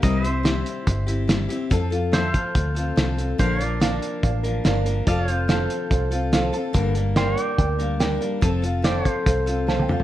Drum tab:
HH |x-x-x-x-x-x-x-x-|x-x-x-x-x-x-x-x-|x-x-x-x-x-x-x-x-|x-x-x-x-x-x-x-x-|
SD |----o-------o---|----o-------o---|----o-------o---|----o-------o---|
T1 |----------------|----------------|----------------|----------------|
T2 |----------------|----------------|----------------|----------------|
FT |----------------|----------------|----------------|----------------|
BD |o-------o-------|o-----o-o-------|o-------o-------|o-------o-------|

HH |x-x-x-x-x-x-x-x-|x-x-x-x-x-x-----|
SD |----o-------o---|----o-------o---|
T1 |----------------|-------------o--|
T2 |----------------|--------------o-|
FT |----------------|---------------o|
BD |o-------o-------|o-----o-o-------|